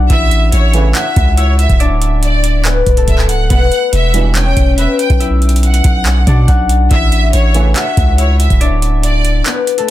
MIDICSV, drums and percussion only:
0, 0, Header, 1, 2, 480
1, 0, Start_track
1, 0, Tempo, 425532
1, 112, Time_signature, 4, 2, 24, 8
1, 11172, End_track
2, 0, Start_track
2, 0, Title_t, "Drums"
2, 112, Note_on_c, 9, 36, 124
2, 112, Note_on_c, 9, 42, 77
2, 224, Note_off_c, 9, 36, 0
2, 224, Note_off_c, 9, 42, 0
2, 353, Note_on_c, 9, 42, 67
2, 466, Note_off_c, 9, 42, 0
2, 591, Note_on_c, 9, 42, 80
2, 704, Note_off_c, 9, 42, 0
2, 830, Note_on_c, 9, 42, 86
2, 942, Note_off_c, 9, 42, 0
2, 1071, Note_on_c, 9, 39, 104
2, 1071, Note_on_c, 9, 42, 74
2, 1184, Note_off_c, 9, 39, 0
2, 1184, Note_off_c, 9, 42, 0
2, 1312, Note_on_c, 9, 36, 91
2, 1313, Note_on_c, 9, 42, 75
2, 1424, Note_off_c, 9, 36, 0
2, 1426, Note_off_c, 9, 42, 0
2, 1551, Note_on_c, 9, 42, 78
2, 1663, Note_off_c, 9, 42, 0
2, 1792, Note_on_c, 9, 42, 73
2, 1905, Note_off_c, 9, 42, 0
2, 1912, Note_on_c, 9, 36, 103
2, 1912, Note_on_c, 9, 42, 44
2, 2025, Note_off_c, 9, 36, 0
2, 2025, Note_off_c, 9, 42, 0
2, 2032, Note_on_c, 9, 42, 75
2, 2145, Note_off_c, 9, 42, 0
2, 2273, Note_on_c, 9, 42, 67
2, 2386, Note_off_c, 9, 42, 0
2, 2512, Note_on_c, 9, 42, 80
2, 2624, Note_off_c, 9, 42, 0
2, 2749, Note_on_c, 9, 42, 85
2, 2862, Note_off_c, 9, 42, 0
2, 2991, Note_on_c, 9, 39, 104
2, 2991, Note_on_c, 9, 42, 76
2, 3103, Note_off_c, 9, 42, 0
2, 3104, Note_off_c, 9, 39, 0
2, 3231, Note_on_c, 9, 36, 92
2, 3231, Note_on_c, 9, 42, 60
2, 3344, Note_off_c, 9, 36, 0
2, 3344, Note_off_c, 9, 42, 0
2, 3352, Note_on_c, 9, 42, 60
2, 3464, Note_off_c, 9, 42, 0
2, 3470, Note_on_c, 9, 42, 76
2, 3471, Note_on_c, 9, 36, 97
2, 3583, Note_off_c, 9, 42, 0
2, 3584, Note_off_c, 9, 36, 0
2, 3591, Note_on_c, 9, 39, 70
2, 3704, Note_off_c, 9, 39, 0
2, 3711, Note_on_c, 9, 42, 80
2, 3823, Note_off_c, 9, 42, 0
2, 3951, Note_on_c, 9, 36, 123
2, 3951, Note_on_c, 9, 42, 77
2, 4064, Note_off_c, 9, 36, 0
2, 4064, Note_off_c, 9, 42, 0
2, 4192, Note_on_c, 9, 42, 67
2, 4305, Note_off_c, 9, 42, 0
2, 4431, Note_on_c, 9, 42, 82
2, 4544, Note_off_c, 9, 42, 0
2, 4669, Note_on_c, 9, 42, 82
2, 4781, Note_off_c, 9, 42, 0
2, 4910, Note_on_c, 9, 42, 77
2, 4911, Note_on_c, 9, 39, 102
2, 5023, Note_off_c, 9, 39, 0
2, 5023, Note_off_c, 9, 42, 0
2, 5151, Note_on_c, 9, 36, 92
2, 5152, Note_on_c, 9, 42, 76
2, 5264, Note_off_c, 9, 36, 0
2, 5265, Note_off_c, 9, 42, 0
2, 5390, Note_on_c, 9, 42, 76
2, 5502, Note_off_c, 9, 42, 0
2, 5631, Note_on_c, 9, 42, 73
2, 5744, Note_off_c, 9, 42, 0
2, 5751, Note_on_c, 9, 36, 106
2, 5752, Note_on_c, 9, 42, 44
2, 5864, Note_off_c, 9, 36, 0
2, 5864, Note_off_c, 9, 42, 0
2, 5871, Note_on_c, 9, 42, 78
2, 5984, Note_off_c, 9, 42, 0
2, 6112, Note_on_c, 9, 42, 40
2, 6192, Note_off_c, 9, 42, 0
2, 6192, Note_on_c, 9, 42, 55
2, 6272, Note_off_c, 9, 42, 0
2, 6272, Note_on_c, 9, 42, 67
2, 6352, Note_off_c, 9, 42, 0
2, 6352, Note_on_c, 9, 42, 66
2, 6464, Note_off_c, 9, 42, 0
2, 6472, Note_on_c, 9, 42, 68
2, 6585, Note_off_c, 9, 42, 0
2, 6590, Note_on_c, 9, 42, 85
2, 6592, Note_on_c, 9, 36, 88
2, 6702, Note_off_c, 9, 42, 0
2, 6704, Note_off_c, 9, 36, 0
2, 6831, Note_on_c, 9, 39, 102
2, 6831, Note_on_c, 9, 42, 78
2, 6944, Note_off_c, 9, 39, 0
2, 6944, Note_off_c, 9, 42, 0
2, 7071, Note_on_c, 9, 36, 95
2, 7073, Note_on_c, 9, 42, 67
2, 7184, Note_off_c, 9, 36, 0
2, 7186, Note_off_c, 9, 42, 0
2, 7311, Note_on_c, 9, 36, 97
2, 7311, Note_on_c, 9, 42, 78
2, 7424, Note_off_c, 9, 36, 0
2, 7424, Note_off_c, 9, 42, 0
2, 7551, Note_on_c, 9, 42, 83
2, 7664, Note_off_c, 9, 42, 0
2, 7791, Note_on_c, 9, 42, 77
2, 7792, Note_on_c, 9, 36, 124
2, 7904, Note_off_c, 9, 36, 0
2, 7904, Note_off_c, 9, 42, 0
2, 8032, Note_on_c, 9, 42, 66
2, 8145, Note_off_c, 9, 42, 0
2, 8271, Note_on_c, 9, 42, 78
2, 8384, Note_off_c, 9, 42, 0
2, 8510, Note_on_c, 9, 42, 83
2, 8623, Note_off_c, 9, 42, 0
2, 8752, Note_on_c, 9, 39, 102
2, 8752, Note_on_c, 9, 42, 78
2, 8864, Note_off_c, 9, 42, 0
2, 8865, Note_off_c, 9, 39, 0
2, 8992, Note_on_c, 9, 36, 94
2, 8993, Note_on_c, 9, 42, 77
2, 9104, Note_off_c, 9, 36, 0
2, 9106, Note_off_c, 9, 42, 0
2, 9231, Note_on_c, 9, 42, 78
2, 9344, Note_off_c, 9, 42, 0
2, 9472, Note_on_c, 9, 42, 75
2, 9585, Note_off_c, 9, 42, 0
2, 9592, Note_on_c, 9, 36, 104
2, 9592, Note_on_c, 9, 42, 44
2, 9704, Note_off_c, 9, 36, 0
2, 9705, Note_off_c, 9, 42, 0
2, 9712, Note_on_c, 9, 42, 78
2, 9825, Note_off_c, 9, 42, 0
2, 9953, Note_on_c, 9, 42, 69
2, 10065, Note_off_c, 9, 42, 0
2, 10191, Note_on_c, 9, 42, 83
2, 10304, Note_off_c, 9, 42, 0
2, 10429, Note_on_c, 9, 42, 83
2, 10542, Note_off_c, 9, 42, 0
2, 10670, Note_on_c, 9, 42, 76
2, 10671, Note_on_c, 9, 39, 104
2, 10783, Note_off_c, 9, 39, 0
2, 10783, Note_off_c, 9, 42, 0
2, 10911, Note_on_c, 9, 42, 58
2, 11024, Note_off_c, 9, 42, 0
2, 11031, Note_on_c, 9, 42, 59
2, 11144, Note_off_c, 9, 42, 0
2, 11172, End_track
0, 0, End_of_file